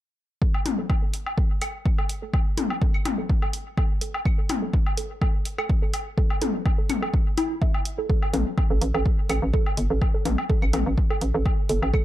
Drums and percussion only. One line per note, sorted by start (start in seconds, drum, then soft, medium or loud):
0.42 kick loud
0.54 low woodblock soft
0.66 closed hi-hat medium
0.66 mid tom medium
0.90 kick loud
0.90 low woodblock soft
1.14 closed hi-hat medium
1.26 low woodblock soft
1.38 kick loud
1.62 closed hi-hat medium
1.62 claves medium
1.62 low woodblock soft
1.86 kick loud
1.98 low woodblock soft
2.09 closed hi-hat medium
2.34 kick loud
2.34 low woodblock soft
2.58 closed hi-hat medium
2.58 mid tom medium
2.70 low woodblock soft
2.82 kick loud
2.94 claves medium
3.05 closed hi-hat medium
3.05 mid tom medium
3.05 low woodblock soft
3.30 kick loud
3.42 low woodblock soft
3.53 closed hi-hat medium
3.78 kick loud
3.78 low woodblock soft
4.01 closed hi-hat medium
4.14 low woodblock soft
4.25 kick loud
4.25 claves medium
4.49 closed hi-hat loud
4.49 mid tom medium
4.49 low woodblock soft
4.74 kick loud
4.86 low woodblock soft
4.97 closed hi-hat loud
5.22 kick loud
5.22 low woodblock soft
5.45 closed hi-hat medium
5.58 claves medium
5.58 low woodblock soft
5.70 kick loud
5.94 closed hi-hat medium
5.94 low woodblock soft
6.18 kick loud
6.30 low woodblock soft
6.42 closed hi-hat loud
6.42 mid tom medium
6.66 kick loud
6.66 low woodblock soft
6.90 closed hi-hat medium
6.90 mid tom medium
6.90 claves medium
7.03 low woodblock soft
7.14 kick loud
7.38 closed hi-hat medium
7.38 low woodblock soft
7.62 kick loud
7.74 low woodblock soft
7.85 closed hi-hat medium
8.10 kick loud
8.22 low woodblock soft
8.34 closed hi-hat medium
8.34 mid tom medium
8.58 kick loud
8.58 low woodblock soft
8.82 closed hi-hat medium
8.95 low woodblock soft
9.06 kick loud
9.29 closed hi-hat medium
9.29 claves medium
9.29 low woodblock soft
9.54 kick loud
9.66 low woodblock soft
9.77 closed hi-hat medium
10.02 kick loud
10.02 low woodblock soft
10.25 closed hi-hat medium
10.25 mid tom medium
10.38 low woodblock soft
10.50 kick loud
10.62 claves medium
10.73 closed hi-hat medium
10.73 mid tom medium
10.73 low woodblock soft
10.98 kick loud
11.10 low woodblock soft
11.21 closed hi-hat medium
11.46 kick loud
11.46 low woodblock soft
11.69 closed hi-hat medium
11.83 low woodblock soft
11.94 kick loud
11.94 claves medium